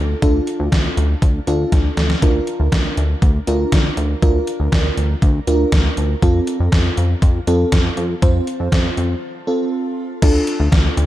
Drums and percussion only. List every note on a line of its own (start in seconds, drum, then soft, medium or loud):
0.22 kick loud
0.22 closed hi-hat medium
0.47 closed hi-hat medium
0.72 kick loud
0.72 snare loud
0.72 closed hi-hat medium
0.97 closed hi-hat medium
1.22 kick loud
1.22 closed hi-hat medium
1.47 closed hi-hat medium
1.72 kick loud
1.72 snare medium
1.72 closed hi-hat medium
1.97 snare medium
1.97 closed hi-hat medium
2.10 snare medium
2.22 kick loud
2.22 closed hi-hat medium
2.47 closed hi-hat medium
2.72 kick loud
2.72 snare loud
2.72 closed hi-hat medium
2.97 closed hi-hat medium
3.22 kick loud
3.22 closed hi-hat medium
3.47 closed hi-hat medium
3.72 kick loud
3.72 snare loud
3.72 closed hi-hat medium
3.97 closed hi-hat medium
4.22 kick loud
4.22 closed hi-hat medium
4.47 closed hi-hat medium
4.72 kick loud
4.72 snare loud
4.72 closed hi-hat medium
4.97 closed hi-hat medium
5.22 kick loud
5.22 closed hi-hat medium
5.47 closed hi-hat medium
5.72 kick loud
5.72 snare loud
5.72 closed hi-hat medium
5.97 closed hi-hat medium
6.22 kick loud
6.22 closed hi-hat medium
6.47 closed hi-hat medium
6.72 kick loud
6.72 snare loud
6.72 closed hi-hat medium
6.97 closed hi-hat medium
7.22 kick loud
7.22 closed hi-hat medium
7.47 closed hi-hat medium
7.72 kick loud
7.72 snare loud
7.72 closed hi-hat medium
7.97 closed hi-hat medium
8.22 kick loud
8.22 closed hi-hat medium
8.47 closed hi-hat medium
8.72 kick loud
8.72 snare loud
8.72 closed hi-hat medium
8.97 closed hi-hat medium
10.22 kick loud
10.22 closed hi-hat medium
10.22 crash medium
10.47 closed hi-hat medium
10.72 kick loud
10.72 snare loud
10.72 closed hi-hat medium
10.97 closed hi-hat medium